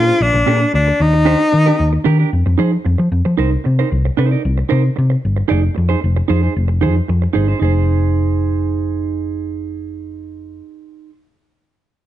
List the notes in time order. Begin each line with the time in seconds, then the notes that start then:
Already playing: A#2 F4
0.07 D4 G#4 C5
0.21 A#1 D4
0.34 A#1, muted clean electric guitar stroke
0.46 A#2 D4 G#4 A#4
0.60 muted clean electric guitar stroke
0.73 D2 D4, muted clean electric guitar stroke
0.87 muted clean electric guitar stroke
1.00 D#2 D#4
1.13 muted clean electric guitar stroke
1.25 D4 G4 C5
1.40 muted clean electric guitar stroke
1.52 D#3, muted clean electric guitar stroke
1.66 D4 G4 A#4
1.78 D#2, muted clean electric guitar stroke
1.93 muted clean electric guitar stroke
2.04 D#3 D4 G4 A#4
2.19 D4 G4 A#4
2.33 F2
2.46 F2, muted clean electric guitar stroke
2.58 F3 D#4 G#4 C5
2.72 muted clean electric guitar stroke
2.85 F2, muted clean electric guitar stroke
2.98 F3, muted clean electric guitar stroke
3.12 F2
3.25 F3, muted clean electric guitar stroke
3.37 C2 D#4 A#4 C5
3.51 muted clean electric guitar stroke
3.64 C3, muted clean electric guitar stroke
3.79 D#4 A#4 C5
3.91 C2, muted clean electric guitar stroke
4.05 muted clean electric guitar stroke
4.17 C3 D#4 A#4 C5
4.31 D#4 A#4 D5
4.45 C2
4.58 muted clean electric guitar stroke
4.69 C3 D#4 A#4 C5
4.84 muted clean electric guitar stroke
4.96 C3, muted clean electric guitar stroke
5.10 muted clean electric guitar stroke
5.25 G1
5.36 muted clean electric guitar stroke
5.48 F1 D#4 G#4 D5
5.62 muted clean electric guitar stroke
5.75 F2, muted clean electric guitar stroke
5.89 D#4 G#4 C5
6.01 F1, muted clean electric guitar stroke
6.16 muted clean electric guitar stroke
6.28 F2 D#4 G#4 C5
6.42 D#4 G#4 C5
6.56 F1
6.68 muted clean electric guitar stroke
6.81 F2 D#4 G#4 C5
6.96 muted clean electric guitar stroke
7.08 F2, muted clean electric guitar stroke
7.22 muted clean electric guitar stroke
7.33 G1 D#4 G#4 C5
7.48 D#4 G#4 C5
7.60 F1 D#4 G#4
7.64 C5